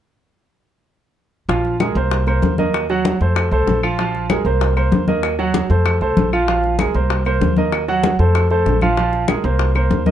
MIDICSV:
0, 0, Header, 1, 4, 480
1, 0, Start_track
1, 0, Tempo, 311688
1, 2298, Time_signature, 4, 2, 24, 8
1, 15569, End_track
2, 0, Start_track
2, 0, Title_t, "Grand piano"
2, 0, Program_c, 0, 0
2, 2291, Note_on_c, 0, 53, 62
2, 2293, Note_on_c, 0, 65, 69
2, 2299, Note_on_c, 0, 77, 62
2, 2688, Note_off_c, 0, 53, 0
2, 2689, Note_off_c, 0, 65, 0
2, 2692, Note_off_c, 0, 77, 0
2, 2774, Note_on_c, 0, 56, 66
2, 2781, Note_on_c, 0, 68, 61
2, 2782, Note_on_c, 0, 70, 65
2, 2973, Note_off_c, 0, 56, 0
2, 2977, Note_off_c, 0, 68, 0
2, 2977, Note_off_c, 0, 70, 0
2, 3021, Note_on_c, 0, 58, 61
2, 3028, Note_on_c, 0, 70, 63
2, 3030, Note_on_c, 0, 72, 65
2, 3414, Note_off_c, 0, 58, 0
2, 3418, Note_off_c, 0, 70, 0
2, 3419, Note_off_c, 0, 72, 0
2, 3495, Note_on_c, 0, 58, 62
2, 3498, Note_on_c, 0, 70, 64
2, 3505, Note_on_c, 0, 72, 65
2, 3890, Note_off_c, 0, 58, 0
2, 3892, Note_off_c, 0, 70, 0
2, 3896, Note_off_c, 0, 72, 0
2, 3980, Note_on_c, 0, 58, 72
2, 3982, Note_on_c, 0, 70, 64
2, 3986, Note_on_c, 0, 75, 73
2, 4373, Note_off_c, 0, 58, 0
2, 4374, Note_off_c, 0, 70, 0
2, 4377, Note_off_c, 0, 75, 0
2, 4463, Note_on_c, 0, 54, 77
2, 4469, Note_on_c, 0, 66, 77
2, 4472, Note_on_c, 0, 78, 76
2, 4855, Note_off_c, 0, 54, 0
2, 4858, Note_off_c, 0, 66, 0
2, 4860, Note_off_c, 0, 78, 0
2, 4948, Note_on_c, 0, 57, 62
2, 4952, Note_on_c, 0, 69, 58
2, 4955, Note_on_c, 0, 72, 66
2, 5338, Note_off_c, 0, 57, 0
2, 5340, Note_off_c, 0, 69, 0
2, 5342, Note_off_c, 0, 72, 0
2, 5419, Note_on_c, 0, 57, 62
2, 5425, Note_on_c, 0, 69, 72
2, 5428, Note_on_c, 0, 72, 69
2, 5813, Note_off_c, 0, 57, 0
2, 5817, Note_off_c, 0, 69, 0
2, 5818, Note_off_c, 0, 72, 0
2, 5901, Note_on_c, 0, 53, 73
2, 5903, Note_on_c, 0, 65, 78
2, 5910, Note_on_c, 0, 77, 76
2, 6097, Note_off_c, 0, 53, 0
2, 6098, Note_off_c, 0, 65, 0
2, 6102, Note_off_c, 0, 77, 0
2, 6144, Note_on_c, 0, 53, 76
2, 6150, Note_on_c, 0, 65, 74
2, 6153, Note_on_c, 0, 77, 71
2, 6536, Note_off_c, 0, 53, 0
2, 6539, Note_off_c, 0, 65, 0
2, 6541, Note_off_c, 0, 77, 0
2, 6622, Note_on_c, 0, 56, 64
2, 6627, Note_on_c, 0, 68, 63
2, 6632, Note_on_c, 0, 70, 64
2, 6818, Note_off_c, 0, 56, 0
2, 6821, Note_off_c, 0, 68, 0
2, 6823, Note_off_c, 0, 70, 0
2, 6861, Note_on_c, 0, 58, 63
2, 6866, Note_on_c, 0, 70, 56
2, 6869, Note_on_c, 0, 72, 62
2, 7254, Note_off_c, 0, 58, 0
2, 7257, Note_off_c, 0, 70, 0
2, 7259, Note_off_c, 0, 72, 0
2, 7337, Note_on_c, 0, 58, 62
2, 7343, Note_on_c, 0, 70, 60
2, 7347, Note_on_c, 0, 72, 70
2, 7732, Note_off_c, 0, 58, 0
2, 7735, Note_off_c, 0, 70, 0
2, 7738, Note_off_c, 0, 72, 0
2, 7818, Note_on_c, 0, 58, 68
2, 7823, Note_on_c, 0, 70, 65
2, 7825, Note_on_c, 0, 75, 70
2, 8212, Note_off_c, 0, 58, 0
2, 8215, Note_off_c, 0, 70, 0
2, 8217, Note_off_c, 0, 75, 0
2, 8297, Note_on_c, 0, 54, 80
2, 8301, Note_on_c, 0, 66, 76
2, 8306, Note_on_c, 0, 78, 67
2, 8691, Note_off_c, 0, 54, 0
2, 8694, Note_off_c, 0, 66, 0
2, 8697, Note_off_c, 0, 78, 0
2, 8775, Note_on_c, 0, 57, 57
2, 8782, Note_on_c, 0, 69, 56
2, 8786, Note_on_c, 0, 72, 63
2, 9171, Note_off_c, 0, 57, 0
2, 9174, Note_off_c, 0, 69, 0
2, 9177, Note_off_c, 0, 72, 0
2, 9260, Note_on_c, 0, 57, 62
2, 9263, Note_on_c, 0, 69, 61
2, 9270, Note_on_c, 0, 72, 67
2, 9653, Note_off_c, 0, 57, 0
2, 9656, Note_off_c, 0, 69, 0
2, 9659, Note_off_c, 0, 72, 0
2, 9745, Note_on_c, 0, 53, 72
2, 9752, Note_on_c, 0, 65, 77
2, 9754, Note_on_c, 0, 77, 69
2, 9940, Note_off_c, 0, 53, 0
2, 9944, Note_off_c, 0, 65, 0
2, 9945, Note_off_c, 0, 77, 0
2, 9983, Note_on_c, 0, 53, 61
2, 9988, Note_on_c, 0, 65, 68
2, 9990, Note_on_c, 0, 77, 60
2, 10375, Note_off_c, 0, 53, 0
2, 10378, Note_off_c, 0, 65, 0
2, 10379, Note_off_c, 0, 77, 0
2, 10464, Note_on_c, 0, 56, 60
2, 10464, Note_on_c, 0, 68, 65
2, 10470, Note_on_c, 0, 70, 63
2, 10659, Note_off_c, 0, 56, 0
2, 10659, Note_off_c, 0, 68, 0
2, 10663, Note_off_c, 0, 70, 0
2, 10700, Note_on_c, 0, 58, 63
2, 10704, Note_on_c, 0, 70, 63
2, 10711, Note_on_c, 0, 72, 64
2, 11094, Note_off_c, 0, 58, 0
2, 11096, Note_off_c, 0, 70, 0
2, 11100, Note_off_c, 0, 72, 0
2, 11181, Note_on_c, 0, 58, 66
2, 11185, Note_on_c, 0, 70, 62
2, 11190, Note_on_c, 0, 72, 70
2, 11574, Note_off_c, 0, 58, 0
2, 11577, Note_off_c, 0, 70, 0
2, 11579, Note_off_c, 0, 72, 0
2, 11662, Note_on_c, 0, 58, 67
2, 11667, Note_on_c, 0, 70, 62
2, 11673, Note_on_c, 0, 75, 69
2, 12055, Note_off_c, 0, 58, 0
2, 12058, Note_off_c, 0, 70, 0
2, 12061, Note_off_c, 0, 75, 0
2, 12140, Note_on_c, 0, 54, 74
2, 12145, Note_on_c, 0, 66, 79
2, 12149, Note_on_c, 0, 78, 79
2, 12534, Note_off_c, 0, 54, 0
2, 12537, Note_off_c, 0, 66, 0
2, 12539, Note_off_c, 0, 78, 0
2, 12621, Note_on_c, 0, 57, 60
2, 12624, Note_on_c, 0, 69, 67
2, 12628, Note_on_c, 0, 72, 60
2, 13014, Note_off_c, 0, 57, 0
2, 13016, Note_off_c, 0, 69, 0
2, 13019, Note_off_c, 0, 72, 0
2, 13104, Note_on_c, 0, 57, 71
2, 13107, Note_on_c, 0, 69, 69
2, 13111, Note_on_c, 0, 72, 63
2, 13496, Note_off_c, 0, 57, 0
2, 13498, Note_off_c, 0, 69, 0
2, 13500, Note_off_c, 0, 72, 0
2, 13585, Note_on_c, 0, 53, 80
2, 13591, Note_on_c, 0, 65, 67
2, 13596, Note_on_c, 0, 77, 74
2, 13780, Note_off_c, 0, 53, 0
2, 13784, Note_off_c, 0, 65, 0
2, 13786, Note_off_c, 0, 77, 0
2, 13820, Note_on_c, 0, 53, 77
2, 13825, Note_on_c, 0, 65, 61
2, 13827, Note_on_c, 0, 77, 61
2, 14214, Note_off_c, 0, 53, 0
2, 14217, Note_off_c, 0, 65, 0
2, 14218, Note_off_c, 0, 77, 0
2, 14302, Note_on_c, 0, 56, 65
2, 14303, Note_on_c, 0, 68, 69
2, 14310, Note_on_c, 0, 70, 66
2, 14498, Note_off_c, 0, 56, 0
2, 14498, Note_off_c, 0, 68, 0
2, 14503, Note_off_c, 0, 70, 0
2, 14541, Note_on_c, 0, 58, 70
2, 14544, Note_on_c, 0, 70, 57
2, 14549, Note_on_c, 0, 72, 61
2, 14935, Note_off_c, 0, 58, 0
2, 14936, Note_off_c, 0, 70, 0
2, 14939, Note_off_c, 0, 72, 0
2, 15019, Note_on_c, 0, 58, 66
2, 15025, Note_on_c, 0, 70, 66
2, 15030, Note_on_c, 0, 72, 65
2, 15413, Note_off_c, 0, 58, 0
2, 15417, Note_off_c, 0, 70, 0
2, 15420, Note_off_c, 0, 72, 0
2, 15492, Note_on_c, 0, 58, 59
2, 15498, Note_on_c, 0, 70, 60
2, 15503, Note_on_c, 0, 75, 67
2, 15569, Note_off_c, 0, 58, 0
2, 15569, Note_off_c, 0, 70, 0
2, 15569, Note_off_c, 0, 75, 0
2, 15569, End_track
3, 0, Start_track
3, 0, Title_t, "Upright bass"
3, 0, Program_c, 1, 32
3, 2289, Note_on_c, 1, 34, 86
3, 2963, Note_off_c, 1, 34, 0
3, 3008, Note_on_c, 1, 36, 89
3, 3683, Note_off_c, 1, 36, 0
3, 3733, Note_on_c, 1, 39, 72
3, 4851, Note_off_c, 1, 39, 0
3, 4939, Note_on_c, 1, 41, 83
3, 5385, Note_off_c, 1, 41, 0
3, 5411, Note_on_c, 1, 36, 72
3, 5638, Note_off_c, 1, 36, 0
3, 5655, Note_on_c, 1, 34, 78
3, 6772, Note_off_c, 1, 34, 0
3, 6849, Note_on_c, 1, 36, 80
3, 7523, Note_off_c, 1, 36, 0
3, 7572, Note_on_c, 1, 39, 74
3, 8690, Note_off_c, 1, 39, 0
3, 8774, Note_on_c, 1, 41, 86
3, 9223, Note_off_c, 1, 41, 0
3, 9255, Note_on_c, 1, 36, 66
3, 9480, Note_off_c, 1, 36, 0
3, 9500, Note_on_c, 1, 34, 79
3, 10614, Note_off_c, 1, 34, 0
3, 10697, Note_on_c, 1, 36, 77
3, 11368, Note_off_c, 1, 36, 0
3, 11414, Note_on_c, 1, 39, 79
3, 12532, Note_off_c, 1, 39, 0
3, 12615, Note_on_c, 1, 41, 86
3, 13287, Note_off_c, 1, 41, 0
3, 13337, Note_on_c, 1, 34, 78
3, 14453, Note_off_c, 1, 34, 0
3, 14537, Note_on_c, 1, 36, 87
3, 15208, Note_off_c, 1, 36, 0
3, 15254, Note_on_c, 1, 39, 84
3, 15569, Note_off_c, 1, 39, 0
3, 15569, End_track
4, 0, Start_track
4, 0, Title_t, "Drums"
4, 2296, Note_on_c, 9, 63, 31
4, 2301, Note_on_c, 9, 60, 59
4, 2450, Note_off_c, 9, 63, 0
4, 2455, Note_off_c, 9, 60, 0
4, 2537, Note_on_c, 9, 60, 32
4, 2537, Note_on_c, 9, 63, 34
4, 2691, Note_off_c, 9, 60, 0
4, 2691, Note_off_c, 9, 63, 0
4, 2773, Note_on_c, 9, 63, 82
4, 2777, Note_on_c, 9, 60, 53
4, 2780, Note_on_c, 9, 75, 61
4, 2927, Note_off_c, 9, 63, 0
4, 2931, Note_off_c, 9, 60, 0
4, 2934, Note_off_c, 9, 75, 0
4, 3015, Note_on_c, 9, 60, 34
4, 3017, Note_on_c, 9, 63, 33
4, 3169, Note_off_c, 9, 60, 0
4, 3171, Note_off_c, 9, 63, 0
4, 3254, Note_on_c, 9, 63, 34
4, 3256, Note_on_c, 9, 60, 64
4, 3408, Note_off_c, 9, 63, 0
4, 3410, Note_off_c, 9, 60, 0
4, 3491, Note_on_c, 9, 63, 28
4, 3499, Note_on_c, 9, 60, 32
4, 3508, Note_on_c, 9, 75, 52
4, 3645, Note_off_c, 9, 63, 0
4, 3653, Note_off_c, 9, 60, 0
4, 3662, Note_off_c, 9, 75, 0
4, 3732, Note_on_c, 9, 63, 69
4, 3742, Note_on_c, 9, 60, 33
4, 3742, Note_on_c, 9, 61, 73
4, 3886, Note_off_c, 9, 63, 0
4, 3896, Note_off_c, 9, 60, 0
4, 3896, Note_off_c, 9, 61, 0
4, 3975, Note_on_c, 9, 63, 80
4, 4129, Note_off_c, 9, 63, 0
4, 4214, Note_on_c, 9, 63, 34
4, 4224, Note_on_c, 9, 60, 65
4, 4225, Note_on_c, 9, 75, 57
4, 4368, Note_off_c, 9, 63, 0
4, 4378, Note_off_c, 9, 60, 0
4, 4379, Note_off_c, 9, 75, 0
4, 4458, Note_on_c, 9, 60, 31
4, 4458, Note_on_c, 9, 63, 33
4, 4612, Note_off_c, 9, 60, 0
4, 4612, Note_off_c, 9, 63, 0
4, 4697, Note_on_c, 9, 63, 94
4, 4700, Note_on_c, 9, 60, 60
4, 4851, Note_off_c, 9, 63, 0
4, 4854, Note_off_c, 9, 60, 0
4, 4938, Note_on_c, 9, 60, 37
4, 4938, Note_on_c, 9, 63, 30
4, 5092, Note_off_c, 9, 60, 0
4, 5092, Note_off_c, 9, 63, 0
4, 5178, Note_on_c, 9, 60, 71
4, 5182, Note_on_c, 9, 63, 36
4, 5189, Note_on_c, 9, 75, 68
4, 5332, Note_off_c, 9, 60, 0
4, 5336, Note_off_c, 9, 63, 0
4, 5343, Note_off_c, 9, 75, 0
4, 5420, Note_on_c, 9, 63, 30
4, 5422, Note_on_c, 9, 60, 31
4, 5574, Note_off_c, 9, 63, 0
4, 5576, Note_off_c, 9, 60, 0
4, 5660, Note_on_c, 9, 60, 31
4, 5660, Note_on_c, 9, 61, 83
4, 5660, Note_on_c, 9, 63, 65
4, 5814, Note_off_c, 9, 60, 0
4, 5814, Note_off_c, 9, 61, 0
4, 5814, Note_off_c, 9, 63, 0
4, 5904, Note_on_c, 9, 75, 70
4, 6058, Note_off_c, 9, 75, 0
4, 6137, Note_on_c, 9, 63, 33
4, 6143, Note_on_c, 9, 60, 56
4, 6291, Note_off_c, 9, 63, 0
4, 6297, Note_off_c, 9, 60, 0
4, 6385, Note_on_c, 9, 63, 34
4, 6387, Note_on_c, 9, 60, 31
4, 6539, Note_off_c, 9, 63, 0
4, 6541, Note_off_c, 9, 60, 0
4, 6617, Note_on_c, 9, 75, 64
4, 6618, Note_on_c, 9, 63, 91
4, 6626, Note_on_c, 9, 60, 57
4, 6771, Note_off_c, 9, 75, 0
4, 6772, Note_off_c, 9, 63, 0
4, 6780, Note_off_c, 9, 60, 0
4, 6856, Note_on_c, 9, 63, 29
4, 6865, Note_on_c, 9, 60, 33
4, 7010, Note_off_c, 9, 63, 0
4, 7019, Note_off_c, 9, 60, 0
4, 7098, Note_on_c, 9, 63, 35
4, 7104, Note_on_c, 9, 60, 74
4, 7252, Note_off_c, 9, 63, 0
4, 7258, Note_off_c, 9, 60, 0
4, 7340, Note_on_c, 9, 63, 32
4, 7344, Note_on_c, 9, 75, 57
4, 7348, Note_on_c, 9, 60, 34
4, 7494, Note_off_c, 9, 63, 0
4, 7498, Note_off_c, 9, 75, 0
4, 7502, Note_off_c, 9, 60, 0
4, 7579, Note_on_c, 9, 63, 77
4, 7582, Note_on_c, 9, 60, 30
4, 7582, Note_on_c, 9, 61, 77
4, 7733, Note_off_c, 9, 63, 0
4, 7736, Note_off_c, 9, 60, 0
4, 7736, Note_off_c, 9, 61, 0
4, 7817, Note_on_c, 9, 63, 79
4, 7971, Note_off_c, 9, 63, 0
4, 8055, Note_on_c, 9, 63, 30
4, 8058, Note_on_c, 9, 60, 60
4, 8066, Note_on_c, 9, 75, 62
4, 8209, Note_off_c, 9, 63, 0
4, 8212, Note_off_c, 9, 60, 0
4, 8220, Note_off_c, 9, 75, 0
4, 8297, Note_on_c, 9, 63, 33
4, 8301, Note_on_c, 9, 60, 32
4, 8451, Note_off_c, 9, 63, 0
4, 8455, Note_off_c, 9, 60, 0
4, 8534, Note_on_c, 9, 63, 88
4, 8546, Note_on_c, 9, 60, 60
4, 8688, Note_off_c, 9, 63, 0
4, 8700, Note_off_c, 9, 60, 0
4, 8776, Note_on_c, 9, 63, 31
4, 8785, Note_on_c, 9, 60, 32
4, 8930, Note_off_c, 9, 63, 0
4, 8939, Note_off_c, 9, 60, 0
4, 9012, Note_on_c, 9, 63, 36
4, 9019, Note_on_c, 9, 60, 66
4, 9025, Note_on_c, 9, 75, 70
4, 9166, Note_off_c, 9, 63, 0
4, 9173, Note_off_c, 9, 60, 0
4, 9179, Note_off_c, 9, 75, 0
4, 9256, Note_on_c, 9, 60, 32
4, 9256, Note_on_c, 9, 63, 29
4, 9410, Note_off_c, 9, 60, 0
4, 9410, Note_off_c, 9, 63, 0
4, 9498, Note_on_c, 9, 63, 82
4, 9503, Note_on_c, 9, 60, 30
4, 9503, Note_on_c, 9, 61, 73
4, 9652, Note_off_c, 9, 63, 0
4, 9657, Note_off_c, 9, 60, 0
4, 9657, Note_off_c, 9, 61, 0
4, 9750, Note_on_c, 9, 75, 65
4, 9904, Note_off_c, 9, 75, 0
4, 9980, Note_on_c, 9, 63, 33
4, 9982, Note_on_c, 9, 60, 63
4, 10134, Note_off_c, 9, 63, 0
4, 10136, Note_off_c, 9, 60, 0
4, 10216, Note_on_c, 9, 63, 31
4, 10222, Note_on_c, 9, 60, 31
4, 10370, Note_off_c, 9, 63, 0
4, 10376, Note_off_c, 9, 60, 0
4, 10454, Note_on_c, 9, 63, 90
4, 10457, Note_on_c, 9, 60, 56
4, 10470, Note_on_c, 9, 75, 70
4, 10608, Note_off_c, 9, 63, 0
4, 10611, Note_off_c, 9, 60, 0
4, 10624, Note_off_c, 9, 75, 0
4, 10691, Note_on_c, 9, 60, 32
4, 10704, Note_on_c, 9, 63, 30
4, 10845, Note_off_c, 9, 60, 0
4, 10858, Note_off_c, 9, 63, 0
4, 10934, Note_on_c, 9, 63, 33
4, 10938, Note_on_c, 9, 60, 72
4, 11088, Note_off_c, 9, 63, 0
4, 11092, Note_off_c, 9, 60, 0
4, 11169, Note_on_c, 9, 63, 32
4, 11179, Note_on_c, 9, 60, 30
4, 11186, Note_on_c, 9, 75, 56
4, 11323, Note_off_c, 9, 63, 0
4, 11333, Note_off_c, 9, 60, 0
4, 11340, Note_off_c, 9, 75, 0
4, 11418, Note_on_c, 9, 63, 75
4, 11419, Note_on_c, 9, 60, 33
4, 11419, Note_on_c, 9, 61, 73
4, 11572, Note_off_c, 9, 63, 0
4, 11573, Note_off_c, 9, 60, 0
4, 11573, Note_off_c, 9, 61, 0
4, 11650, Note_on_c, 9, 63, 70
4, 11804, Note_off_c, 9, 63, 0
4, 11896, Note_on_c, 9, 60, 58
4, 11898, Note_on_c, 9, 63, 34
4, 11906, Note_on_c, 9, 75, 66
4, 12050, Note_off_c, 9, 60, 0
4, 12052, Note_off_c, 9, 63, 0
4, 12060, Note_off_c, 9, 75, 0
4, 12140, Note_on_c, 9, 60, 35
4, 12142, Note_on_c, 9, 63, 33
4, 12294, Note_off_c, 9, 60, 0
4, 12296, Note_off_c, 9, 63, 0
4, 12374, Note_on_c, 9, 63, 96
4, 12379, Note_on_c, 9, 60, 64
4, 12528, Note_off_c, 9, 63, 0
4, 12533, Note_off_c, 9, 60, 0
4, 12620, Note_on_c, 9, 60, 34
4, 12626, Note_on_c, 9, 63, 31
4, 12774, Note_off_c, 9, 60, 0
4, 12780, Note_off_c, 9, 63, 0
4, 12858, Note_on_c, 9, 63, 32
4, 12860, Note_on_c, 9, 60, 68
4, 12864, Note_on_c, 9, 75, 64
4, 13012, Note_off_c, 9, 63, 0
4, 13014, Note_off_c, 9, 60, 0
4, 13018, Note_off_c, 9, 75, 0
4, 13098, Note_on_c, 9, 60, 32
4, 13101, Note_on_c, 9, 63, 33
4, 13252, Note_off_c, 9, 60, 0
4, 13255, Note_off_c, 9, 63, 0
4, 13338, Note_on_c, 9, 60, 34
4, 13338, Note_on_c, 9, 61, 73
4, 13340, Note_on_c, 9, 63, 75
4, 13492, Note_off_c, 9, 60, 0
4, 13492, Note_off_c, 9, 61, 0
4, 13494, Note_off_c, 9, 63, 0
4, 13574, Note_on_c, 9, 63, 66
4, 13586, Note_on_c, 9, 75, 65
4, 13728, Note_off_c, 9, 63, 0
4, 13740, Note_off_c, 9, 75, 0
4, 13814, Note_on_c, 9, 63, 29
4, 13821, Note_on_c, 9, 60, 58
4, 13968, Note_off_c, 9, 63, 0
4, 13975, Note_off_c, 9, 60, 0
4, 14055, Note_on_c, 9, 63, 30
4, 14059, Note_on_c, 9, 60, 33
4, 14209, Note_off_c, 9, 63, 0
4, 14213, Note_off_c, 9, 60, 0
4, 14291, Note_on_c, 9, 63, 92
4, 14296, Note_on_c, 9, 60, 59
4, 14298, Note_on_c, 9, 75, 70
4, 14445, Note_off_c, 9, 63, 0
4, 14450, Note_off_c, 9, 60, 0
4, 14452, Note_off_c, 9, 75, 0
4, 14531, Note_on_c, 9, 63, 28
4, 14538, Note_on_c, 9, 60, 38
4, 14685, Note_off_c, 9, 63, 0
4, 14692, Note_off_c, 9, 60, 0
4, 14775, Note_on_c, 9, 60, 64
4, 14775, Note_on_c, 9, 63, 34
4, 14929, Note_off_c, 9, 60, 0
4, 14929, Note_off_c, 9, 63, 0
4, 15014, Note_on_c, 9, 63, 30
4, 15017, Note_on_c, 9, 60, 33
4, 15025, Note_on_c, 9, 75, 62
4, 15168, Note_off_c, 9, 63, 0
4, 15171, Note_off_c, 9, 60, 0
4, 15179, Note_off_c, 9, 75, 0
4, 15258, Note_on_c, 9, 60, 29
4, 15258, Note_on_c, 9, 61, 71
4, 15260, Note_on_c, 9, 63, 71
4, 15412, Note_off_c, 9, 60, 0
4, 15412, Note_off_c, 9, 61, 0
4, 15414, Note_off_c, 9, 63, 0
4, 15494, Note_on_c, 9, 63, 81
4, 15569, Note_off_c, 9, 63, 0
4, 15569, End_track
0, 0, End_of_file